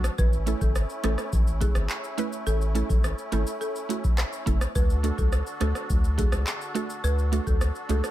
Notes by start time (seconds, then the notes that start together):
Already playing: D3 D4 F#4 A4
0.04 cross-stick, shaker
0.18 A1 A3 C#4 E4 B4, kick, shaker
0.33 shaker
0.46 A3 C#4 E4 A4, closed hi-hat, shaker
0.61 G#1 A4, kick, shaker
0.75 cross-stick, shaker
0.90 shaker
1.03 A1 A3 C#4 E4 A4, cross-stick, closed hi-hat, shaker
1.18 cross-stick, shaker
1.33 A1, kick, shaker
1.47 shaker
1.61 A3 C#4 E4 G#4 A4, kick, closed hi-hat, shaker
1.75 G#1, cross-stick, shaker
1.90 clap, shaker
2.04 shaker
2.18 A3 C#4 E4 B4, closed hi-hat, shaker
2.33 shaker
2.47 A1 A4, shaker
2.61 shaker
2.75 A3 C#4 E4 A4, closed hi-hat, shaker
2.89 A1 A4, kick, shaker
3.04 cross-stick, shaker
3.18 shaker
3.32 G#1 A3 C#4 E4 A4, closed hi-hat, shaker
3.47 shaker
3.61 A4, shaker
3.76 shaker
3.89 A3 C#4 E4 F#4, closed hi-hat, shaker
4.04 kick, shaker
4.18 cross-stick, clap, shaker
4.33 shaker
4.46 F#1 A3 C#4 E4 A4, kick, closed hi-hat, shaker
4.61 cross-stick, shaker
4.75 D2 D3 D4 F#4 A4 B4, kick, shaker
4.90 shaker
5.03 A3 D4 F#4 A4, closed hi-hat, shaker
5.18 C#2 A4, kick, shaker
5.32 cross-stick, shaker
5.47 shaker
5.60 D2 A3 D4 F#4 A4, cross-stick, closed hi-hat, shaker
5.75 cross-stick, shaker
5.90 D2, kick, shaker
6.04 shaker
6.18 A3 D4 F#4 G#4 A4, kick, closed hi-hat, shaker
6.32 C#2, cross-stick, shaker
6.47 clap, shaker
6.61 shaker
6.75 A3 D4 F#4 A4, closed hi-hat, shaker
6.90 shaker
7.04 D2 B4, shaker
7.19 shaker
7.32 A3 D4 F#4 A4, closed hi-hat, shaker
7.47 D2 A4, kick, shaker
7.61 cross-stick, shaker
7.75 shaker
7.89 C#2 A3 D4 F#4 G#4 A4, closed hi-hat, shaker
8.04 cross-stick, shaker